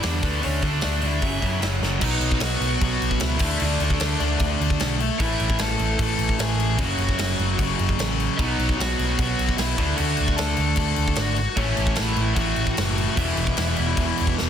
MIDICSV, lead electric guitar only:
0, 0, Header, 1, 2, 480
1, 0, Start_track
1, 0, Tempo, 396040
1, 536, Time_signature, 4, 2, 24, 8
1, 6776, Tempo, 399202
1, 17482, End_track
2, 0, Start_track
2, 0, Title_t, "Lead electric guitar"
2, 0, Program_c, 0, 29
2, 35, Note_on_c, 0, 74, 92
2, 51, Note_on_c, 0, 62, 75
2, 276, Note_off_c, 0, 62, 0
2, 293, Note_off_c, 0, 74, 0
2, 303, Note_on_c, 0, 71, 85
2, 313, Note_on_c, 0, 59, 65
2, 522, Note_off_c, 0, 71, 0
2, 528, Note_off_c, 0, 59, 0
2, 536, Note_on_c, 0, 73, 86
2, 541, Note_on_c, 0, 61, 69
2, 761, Note_off_c, 0, 61, 0
2, 777, Note_off_c, 0, 73, 0
2, 782, Note_on_c, 0, 74, 90
2, 789, Note_on_c, 0, 62, 72
2, 1228, Note_off_c, 0, 62, 0
2, 1272, Note_off_c, 0, 74, 0
2, 1286, Note_on_c, 0, 76, 85
2, 1295, Note_on_c, 0, 64, 67
2, 1941, Note_off_c, 0, 76, 0
2, 1946, Note_off_c, 0, 64, 0
2, 2462, Note_on_c, 0, 75, 95
2, 2472, Note_on_c, 0, 63, 77
2, 2909, Note_off_c, 0, 63, 0
2, 2951, Note_off_c, 0, 75, 0
2, 2955, Note_on_c, 0, 78, 104
2, 2969, Note_on_c, 0, 66, 78
2, 3391, Note_off_c, 0, 78, 0
2, 3398, Note_off_c, 0, 66, 0
2, 3430, Note_on_c, 0, 66, 90
2, 3435, Note_on_c, 0, 78, 98
2, 3870, Note_off_c, 0, 66, 0
2, 3895, Note_off_c, 0, 78, 0
2, 3900, Note_on_c, 0, 76, 93
2, 3910, Note_on_c, 0, 64, 59
2, 4345, Note_off_c, 0, 64, 0
2, 4392, Note_off_c, 0, 76, 0
2, 4395, Note_on_c, 0, 62, 77
2, 4415, Note_on_c, 0, 74, 96
2, 4608, Note_off_c, 0, 62, 0
2, 4637, Note_on_c, 0, 62, 62
2, 4640, Note_off_c, 0, 74, 0
2, 4657, Note_on_c, 0, 74, 82
2, 5537, Note_off_c, 0, 62, 0
2, 5547, Note_off_c, 0, 74, 0
2, 6309, Note_on_c, 0, 64, 75
2, 6321, Note_on_c, 0, 76, 96
2, 6750, Note_off_c, 0, 64, 0
2, 6784, Note_on_c, 0, 69, 88
2, 6803, Note_off_c, 0, 76, 0
2, 6811, Note_on_c, 0, 81, 113
2, 7225, Note_off_c, 0, 69, 0
2, 7285, Note_off_c, 0, 81, 0
2, 7286, Note_on_c, 0, 69, 86
2, 7311, Note_on_c, 0, 81, 113
2, 7716, Note_off_c, 0, 69, 0
2, 7732, Note_on_c, 0, 68, 74
2, 7764, Note_off_c, 0, 81, 0
2, 7769, Note_on_c, 0, 80, 99
2, 8177, Note_off_c, 0, 68, 0
2, 8230, Note_on_c, 0, 66, 79
2, 8243, Note_off_c, 0, 80, 0
2, 8275, Note_on_c, 0, 78, 94
2, 8444, Note_off_c, 0, 66, 0
2, 8471, Note_on_c, 0, 66, 66
2, 8489, Note_off_c, 0, 78, 0
2, 8502, Note_on_c, 0, 78, 83
2, 9372, Note_off_c, 0, 66, 0
2, 9387, Note_off_c, 0, 78, 0
2, 10126, Note_on_c, 0, 75, 98
2, 10138, Note_on_c, 0, 63, 77
2, 10581, Note_off_c, 0, 63, 0
2, 10623, Note_off_c, 0, 75, 0
2, 10626, Note_on_c, 0, 78, 90
2, 10643, Note_on_c, 0, 66, 75
2, 11074, Note_off_c, 0, 66, 0
2, 11094, Note_off_c, 0, 78, 0
2, 11109, Note_on_c, 0, 78, 104
2, 11122, Note_on_c, 0, 66, 83
2, 11551, Note_off_c, 0, 78, 0
2, 11555, Note_off_c, 0, 66, 0
2, 11556, Note_on_c, 0, 76, 98
2, 11579, Note_on_c, 0, 64, 74
2, 12010, Note_off_c, 0, 76, 0
2, 12023, Note_off_c, 0, 64, 0
2, 12045, Note_on_c, 0, 78, 109
2, 12080, Note_on_c, 0, 66, 80
2, 12514, Note_off_c, 0, 66, 0
2, 12517, Note_on_c, 0, 81, 101
2, 12544, Note_off_c, 0, 78, 0
2, 12547, Note_on_c, 0, 69, 81
2, 12972, Note_off_c, 0, 81, 0
2, 12988, Note_off_c, 0, 69, 0
2, 13004, Note_on_c, 0, 81, 114
2, 13024, Note_on_c, 0, 69, 89
2, 13466, Note_off_c, 0, 69, 0
2, 13496, Note_on_c, 0, 78, 104
2, 13504, Note_off_c, 0, 81, 0
2, 13525, Note_on_c, 0, 66, 77
2, 13958, Note_off_c, 0, 66, 0
2, 13965, Note_on_c, 0, 73, 105
2, 13990, Note_off_c, 0, 78, 0
2, 13993, Note_on_c, 0, 61, 75
2, 14424, Note_on_c, 0, 76, 97
2, 14432, Note_off_c, 0, 61, 0
2, 14458, Note_on_c, 0, 64, 72
2, 14465, Note_off_c, 0, 73, 0
2, 14885, Note_off_c, 0, 76, 0
2, 14904, Note_off_c, 0, 64, 0
2, 14904, Note_on_c, 0, 78, 106
2, 14936, Note_on_c, 0, 66, 79
2, 15848, Note_off_c, 0, 66, 0
2, 15886, Note_off_c, 0, 78, 0
2, 15890, Note_on_c, 0, 76, 89
2, 15911, Note_on_c, 0, 64, 63
2, 17284, Note_off_c, 0, 76, 0
2, 17294, Note_off_c, 0, 64, 0
2, 17482, End_track
0, 0, End_of_file